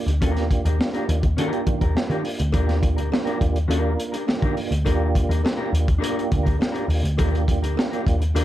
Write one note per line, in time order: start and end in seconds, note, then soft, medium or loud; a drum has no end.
0.00 0.10 A#3 medium
0.00 0.11 D4 medium
0.00 0.11 F4 medium
0.00 0.14 G4 loud
0.06 0.22 D2 medium
0.06 muted clean electric guitar stroke soft
0.06 closed hi-hat medium
0.21 0.60 D#2 loud
0.21 0.68 A#3 medium
0.21 0.43 D4 medium
0.21 0.68 D4 medium
0.21 0.69 F4 medium
0.21 0.43 G4 medium
0.21 0.69 G4 medium
0.21 0.44 A#4 medium
0.21 kick loud
0.21 closed hi-hat medium
0.37 snare soft
0.37 closed hi-hat soft
0.51 kick medium
0.51 closed hi-hat medium
0.65 0.78 D#2 medium
0.65 0.78 D4 medium
0.65 0.79 G4 medium
0.65 0.80 A#4 medium
0.65 closed hi-hat medium
0.79 1.26 A#3 medium
0.79 1.26 D4 medium
0.79 1.26 F4 medium
0.79 1.27 G4 medium
0.79 snare loud
0.94 1.07 D4 medium
0.94 1.08 G4 medium
0.94 1.08 A#4 medium
0.94 closed hi-hat soft
1.08 1.34 D#2 medium
1.08 muted clean electric guitar stroke soft
1.08 closed hi-hat medium
1.22 muted clean electric guitar stroke soft
1.22 kick medium
1.22 closed hi-hat soft
1.37 1.51 D#3 medium
1.37 1.84 A#3 medium
1.37 1.59 D4 medium
1.37 1.84 D4 medium
1.37 1.85 F4 medium
1.37 1.60 G4 loud
1.37 1.85 G4 loud
1.37 1.60 A#4 loud
1.37 closed hi-hat medium
1.53 closed hi-hat soft
1.67 1.80 D#3 medium
1.67 kick loud
1.67 closed hi-hat medium
1.81 1.94 D#2 medium
1.81 1.95 D4 soft
1.81 1.96 G4 medium
1.81 1.97 A#4 medium
1.81 kick medium
1.81 closed hi-hat medium
1.95 2.42 A#3 medium
1.95 2.42 D4 medium
1.95 2.42 F4 medium
1.95 2.43 G4 medium
1.95 muted clean electric guitar stroke soft
1.95 snare loud
2.10 2.23 D#3 loud
2.10 2.23 D4 medium
2.10 2.23 G4 medium
2.10 2.24 A#4 medium
2.10 closed hi-hat soft
2.24 muted clean electric guitar stroke soft
2.24 open hi-hat medium
2.39 2.52 D2 medium
2.39 muted clean electric guitar stroke soft
2.39 closed hi-hat medium
2.52 2.97 D#2 loud
2.52 3.00 A#3 medium
2.52 2.75 D4 medium
2.52 3.01 D4 medium
2.52 3.01 F4 medium
2.52 2.76 G4 medium
2.52 3.01 G4 loud
2.52 2.76 A#4 medium
2.52 kick loud
2.52 closed hi-hat medium
2.52 cowbell medium
2.69 snare soft
2.69 closed hi-hat soft
2.83 muted clean electric guitar stroke soft
2.83 kick loud
2.83 closed hi-hat medium
2.96 3.10 D2 medium
2.96 3.09 D4 soft
2.96 3.10 G4 medium
2.96 3.11 A#4 medium
2.96 closed hi-hat medium
3.10 3.58 A#3 medium
3.10 3.59 D4 medium
3.10 3.59 F4 medium
3.10 3.59 G4 loud
3.10 muted clean electric guitar stroke soft
3.10 snare loud
3.10 cowbell medium
3.25 3.39 D4 medium
3.25 3.39 G4 medium
3.25 3.40 A#4 medium
3.25 closed hi-hat soft
3.41 3.66 D#2 medium
3.41 kick medium
3.41 closed hi-hat medium
3.54 muted clean electric guitar stroke soft
3.54 closed hi-hat soft
3.68 3.95 D#2 medium
3.68 4.16 A#3 medium
3.68 3.91 D4 medium
3.68 4.17 D4 medium
3.68 4.17 F4 medium
3.68 3.91 G4 medium
3.68 3.77 A4 medium
3.68 3.92 A#4 medium
3.68 closed hi-hat medium
3.68 cowbell medium
3.78 4.20 A#4 medium
3.97 muted clean electric guitar stroke soft
3.97 closed hi-hat medium
4.12 4.25 D4 medium
4.12 4.26 G4 medium
4.12 4.26 A#4 medium
4.12 closed hi-hat medium
4.27 4.74 A#3 medium
4.27 4.74 D4 medium
4.27 4.74 F4 medium
4.27 4.75 G4 loud
4.27 muted clean electric guitar stroke soft
4.27 snare medium
4.27 cowbell medium
4.42 4.55 D#3 loud
4.42 4.55 D4 medium
4.42 4.56 G4 medium
4.42 4.56 A#4 medium
4.42 kick loud
4.42 closed hi-hat soft
4.57 muted clean electric guitar stroke soft
4.57 open hi-hat medium
4.71 4.84 D2 medium
4.71 muted clean electric guitar stroke soft
4.71 closed hi-hat medium
4.85 5.24 D#2 loud
4.85 5.32 A#3 medium
4.85 5.07 D4 medium
4.85 5.33 D4 medium
4.85 5.33 F4 medium
4.85 5.07 G4 loud
4.85 5.33 G4 loud
4.85 5.08 A#4 medium
4.85 kick loud
4.85 closed hi-hat loud
4.85 cowbell medium
5.15 kick loud
5.15 closed hi-hat medium
5.29 5.42 D#2 medium
5.29 5.42 D4 medium
5.29 5.43 G4 medium
5.29 5.43 A#4 medium
5.29 closed hi-hat medium
5.43 5.90 A#3 medium
5.43 5.90 D4 medium
5.43 5.91 F4 medium
5.43 5.91 G4 medium
5.43 muted clean electric guitar stroke soft
5.43 snare loud
5.43 cowbell medium
5.57 5.71 D4 medium
5.57 5.71 G4 medium
5.57 5.72 A#4 medium
5.72 5.98 D#2 medium
5.72 muted clean electric guitar stroke soft
5.72 closed hi-hat medium
5.86 muted clean electric guitar stroke soft
5.86 kick medium
5.86 closed hi-hat soft
5.98 6.48 A#3 medium
5.98 6.22 D4 medium
5.98 6.48 D4 medium
5.98 6.49 F4 medium
5.98 6.23 G4 medium
5.98 6.23 A#4 medium
5.98 cowbell medium
6.03 6.49 G4 loud
6.03 closed hi-hat medium
6.19 closed hi-hat soft
6.29 6.57 D2 medium
6.29 muted clean electric guitar stroke soft
6.29 kick loud
6.29 closed hi-hat medium
6.43 6.57 D4 medium
6.43 6.57 G4 medium
6.43 6.58 A#4 medium
6.43 kick medium
6.43 closed hi-hat medium
6.58 7.06 A#3 medium
6.58 7.06 D4 medium
6.58 7.07 F4 medium
6.58 6.67 F#4 medium
6.58 muted clean electric guitar stroke soft
6.58 cowbell medium
6.62 snare loud
6.67 7.10 G4 medium
6.72 6.86 D4 medium
6.72 6.87 G4 medium
6.72 6.87 A#4 medium
6.72 closed hi-hat soft
6.87 7.02 D#2 medium
6.87 muted clean electric guitar stroke soft
6.87 open hi-hat medium
7.02 7.16 D2 medium
7.02 muted clean electric guitar stroke soft
7.02 closed hi-hat medium
7.17 7.62 D#2 medium
7.17 7.64 A#3 loud
7.17 7.40 D4 medium
7.17 7.65 D4 medium
7.17 7.65 F4 medium
7.17 7.40 G4 medium
7.17 7.65 G4 medium
7.17 7.41 A#4 medium
7.17 kick loud
7.17 closed hi-hat medium
7.17 cowbell medium
7.35 closed hi-hat soft
7.48 kick loud
7.48 closed hi-hat medium
7.62 7.75 D2 loud
7.62 7.76 D4 medium
7.62 7.77 G4 medium
7.62 7.77 A#4 medium
7.62 closed hi-hat medium
7.76 8.23 A#3 medium
7.76 8.23 D4 medium
7.76 8.23 F4 medium
7.76 8.24 G4 medium
7.76 muted clean electric guitar stroke soft
7.76 snare loud
7.76 cowbell medium
7.91 8.05 D4 medium
7.91 8.06 G4 medium
7.91 8.06 A#4 medium
7.91 closed hi-hat soft
8.06 8.32 D#2 medium
8.06 kick loud
8.06 closed hi-hat medium
8.20 muted clean electric guitar stroke medium
8.20 closed hi-hat soft
8.34 8.45 D#2 medium
8.34 8.45 A#3 medium
8.34 8.45 D4 medium
8.34 8.45 D4 loud
8.34 8.45 F4 medium
8.34 8.45 G4 medium
8.34 8.45 G4 loud
8.34 8.45 A#4 loud
8.34 closed hi-hat medium
8.34 cowbell medium